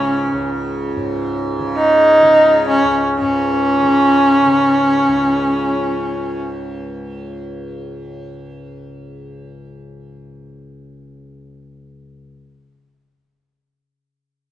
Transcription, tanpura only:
0, 0, Header, 1, 2, 480
1, 0, Start_track
1, 0, Tempo, 500000
1, 13931, End_track
2, 0, Start_track
2, 0, Title_t, "Tanpura"
2, 0, Program_c, 0, 104
2, 0, Note_on_c, 0, 37, 60
2, 0, Note_on_c, 0, 44, 55
2, 0, Note_on_c, 0, 49, 58
2, 317, Note_off_c, 0, 37, 0
2, 320, Note_on_c, 0, 37, 63
2, 919, Note_off_c, 0, 44, 0
2, 923, Note_on_c, 0, 44, 58
2, 1528, Note_off_c, 0, 49, 0
2, 1528, Note_on_c, 0, 49, 59
2, 2134, Note_off_c, 0, 49, 0
2, 2134, Note_on_c, 0, 49, 63
2, 2721, Note_off_c, 0, 37, 0
2, 2725, Note_on_c, 0, 37, 59
2, 3079, Note_off_c, 0, 44, 0
2, 3083, Note_on_c, 0, 44, 60
2, 3666, Note_off_c, 0, 49, 0
2, 3666, Note_on_c, 0, 49, 58
2, 4277, Note_off_c, 0, 49, 0
2, 4277, Note_on_c, 0, 49, 65
2, 4871, Note_off_c, 0, 37, 0
2, 4875, Note_on_c, 0, 37, 54
2, 9947, Note_off_c, 0, 44, 0
2, 11141, Note_off_c, 0, 49, 0
2, 11739, Note_off_c, 0, 37, 0
2, 13931, End_track
0, 0, End_of_file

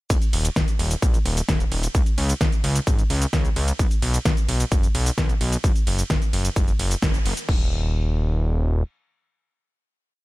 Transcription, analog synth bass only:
0, 0, Header, 1, 2, 480
1, 0, Start_track
1, 0, Key_signature, -6, "minor"
1, 0, Tempo, 461538
1, 105, Time_signature, 4, 2, 24, 8
1, 10653, End_track
2, 0, Start_track
2, 0, Title_t, "Analog synth bass"
2, 0, Program_c, 0, 38
2, 105, Note_on_c, 0, 27, 103
2, 189, Note_off_c, 0, 27, 0
2, 345, Note_on_c, 0, 27, 93
2, 513, Note_off_c, 0, 27, 0
2, 585, Note_on_c, 0, 27, 84
2, 669, Note_off_c, 0, 27, 0
2, 825, Note_on_c, 0, 27, 98
2, 993, Note_off_c, 0, 27, 0
2, 1065, Note_on_c, 0, 34, 82
2, 1234, Note_off_c, 0, 34, 0
2, 1305, Note_on_c, 0, 27, 92
2, 1473, Note_off_c, 0, 27, 0
2, 1545, Note_on_c, 0, 27, 92
2, 1713, Note_off_c, 0, 27, 0
2, 1785, Note_on_c, 0, 27, 83
2, 1953, Note_off_c, 0, 27, 0
2, 2025, Note_on_c, 0, 37, 104
2, 2109, Note_off_c, 0, 37, 0
2, 2264, Note_on_c, 0, 37, 93
2, 2433, Note_off_c, 0, 37, 0
2, 2505, Note_on_c, 0, 37, 83
2, 2589, Note_off_c, 0, 37, 0
2, 2745, Note_on_c, 0, 37, 103
2, 2913, Note_off_c, 0, 37, 0
2, 2985, Note_on_c, 0, 32, 81
2, 3153, Note_off_c, 0, 32, 0
2, 3226, Note_on_c, 0, 37, 93
2, 3394, Note_off_c, 0, 37, 0
2, 3465, Note_on_c, 0, 37, 97
2, 3634, Note_off_c, 0, 37, 0
2, 3705, Note_on_c, 0, 37, 88
2, 3873, Note_off_c, 0, 37, 0
2, 3946, Note_on_c, 0, 35, 104
2, 4030, Note_off_c, 0, 35, 0
2, 4186, Note_on_c, 0, 35, 92
2, 4354, Note_off_c, 0, 35, 0
2, 4426, Note_on_c, 0, 35, 81
2, 4510, Note_off_c, 0, 35, 0
2, 4666, Note_on_c, 0, 35, 100
2, 4834, Note_off_c, 0, 35, 0
2, 4905, Note_on_c, 0, 30, 84
2, 5074, Note_off_c, 0, 30, 0
2, 5146, Note_on_c, 0, 35, 94
2, 5314, Note_off_c, 0, 35, 0
2, 5386, Note_on_c, 0, 35, 95
2, 5554, Note_off_c, 0, 35, 0
2, 5626, Note_on_c, 0, 35, 85
2, 5794, Note_off_c, 0, 35, 0
2, 5865, Note_on_c, 0, 30, 103
2, 5950, Note_off_c, 0, 30, 0
2, 6106, Note_on_c, 0, 30, 94
2, 6274, Note_off_c, 0, 30, 0
2, 6346, Note_on_c, 0, 30, 79
2, 6430, Note_off_c, 0, 30, 0
2, 6586, Note_on_c, 0, 30, 101
2, 6754, Note_off_c, 0, 30, 0
2, 6826, Note_on_c, 0, 30, 96
2, 6994, Note_off_c, 0, 30, 0
2, 7066, Note_on_c, 0, 30, 87
2, 7234, Note_off_c, 0, 30, 0
2, 7305, Note_on_c, 0, 30, 94
2, 7474, Note_off_c, 0, 30, 0
2, 7546, Note_on_c, 0, 30, 94
2, 7630, Note_off_c, 0, 30, 0
2, 7786, Note_on_c, 0, 27, 99
2, 9184, Note_off_c, 0, 27, 0
2, 10653, End_track
0, 0, End_of_file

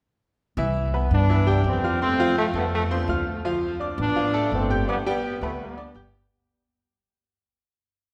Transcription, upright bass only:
0, 0, Header, 1, 2, 480
1, 0, Start_track
1, 0, Key_signature, 0, "major"
1, 0, Tempo, 358423
1, 766, Time_signature, 4, 2, 24, 8
1, 10890, End_track
2, 0, Start_track
2, 0, Title_t, "Upright bass"
2, 0, Program_c, 0, 32
2, 763, Note_on_c, 0, 36, 115
2, 1434, Note_off_c, 0, 36, 0
2, 1482, Note_on_c, 0, 43, 98
2, 2153, Note_off_c, 0, 43, 0
2, 2195, Note_on_c, 0, 41, 93
2, 2625, Note_off_c, 0, 41, 0
2, 3396, Note_on_c, 0, 41, 96
2, 4071, Note_off_c, 0, 41, 0
2, 4120, Note_on_c, 0, 38, 93
2, 4548, Note_off_c, 0, 38, 0
2, 5327, Note_on_c, 0, 33, 106
2, 5998, Note_off_c, 0, 33, 0
2, 6045, Note_on_c, 0, 31, 90
2, 6471, Note_off_c, 0, 31, 0
2, 7248, Note_on_c, 0, 38, 92
2, 7917, Note_off_c, 0, 38, 0
2, 7962, Note_on_c, 0, 31, 97
2, 8388, Note_off_c, 0, 31, 0
2, 10890, End_track
0, 0, End_of_file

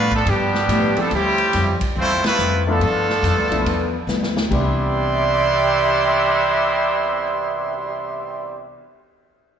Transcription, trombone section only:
0, 0, Header, 1, 2, 480
1, 0, Start_track
1, 0, Key_signature, 0, "major"
1, 0, Tempo, 424929
1, 1262, Time_signature, 4, 2, 24, 8
1, 10839, End_track
2, 0, Start_track
2, 0, Title_t, "Trombone section"
2, 0, Program_c, 0, 61
2, 136, Note_on_c, 0, 57, 80
2, 139, Note_on_c, 0, 53, 79
2, 140, Note_on_c, 0, 50, 84
2, 279, Note_off_c, 0, 50, 0
2, 291, Note_off_c, 0, 57, 0
2, 292, Note_on_c, 0, 55, 88
2, 293, Note_off_c, 0, 53, 0
2, 293, Note_on_c, 0, 50, 84
2, 296, Note_on_c, 0, 47, 86
2, 1076, Note_off_c, 0, 50, 0
2, 1088, Note_off_c, 0, 55, 0
2, 1089, Note_on_c, 0, 50, 81
2, 1089, Note_on_c, 0, 57, 85
2, 1091, Note_off_c, 0, 47, 0
2, 1098, Note_on_c, 0, 53, 84
2, 1260, Note_off_c, 0, 50, 0
2, 1260, Note_off_c, 0, 57, 0
2, 1264, Note_off_c, 0, 53, 0
2, 1277, Note_on_c, 0, 48, 92
2, 1278, Note_on_c, 0, 55, 88
2, 1282, Note_on_c, 0, 45, 93
2, 2016, Note_off_c, 0, 48, 0
2, 2016, Note_off_c, 0, 55, 0
2, 2018, Note_off_c, 0, 45, 0
2, 2220, Note_on_c, 0, 60, 97
2, 2221, Note_on_c, 0, 57, 97
2, 2227, Note_on_c, 0, 53, 88
2, 2504, Note_off_c, 0, 53, 0
2, 2511, Note_off_c, 0, 60, 0
2, 2512, Note_off_c, 0, 57, 0
2, 2516, Note_on_c, 0, 48, 92
2, 2517, Note_on_c, 0, 53, 88
2, 2524, Note_on_c, 0, 59, 89
2, 2971, Note_off_c, 0, 48, 0
2, 2972, Note_off_c, 0, 53, 0
2, 2975, Note_off_c, 0, 59, 0
2, 3010, Note_on_c, 0, 57, 93
2, 3015, Note_on_c, 0, 65, 93
2, 3023, Note_on_c, 0, 50, 86
2, 4621, Note_off_c, 0, 57, 0
2, 4623, Note_off_c, 0, 65, 0
2, 4627, Note_off_c, 0, 50, 0
2, 5095, Note_on_c, 0, 64, 109
2, 5096, Note_on_c, 0, 59, 98
2, 5100, Note_on_c, 0, 55, 104
2, 5108, Note_on_c, 0, 48, 117
2, 9795, Note_off_c, 0, 64, 0
2, 9796, Note_off_c, 0, 59, 0
2, 9798, Note_off_c, 0, 55, 0
2, 9802, Note_off_c, 0, 48, 0
2, 10839, End_track
0, 0, End_of_file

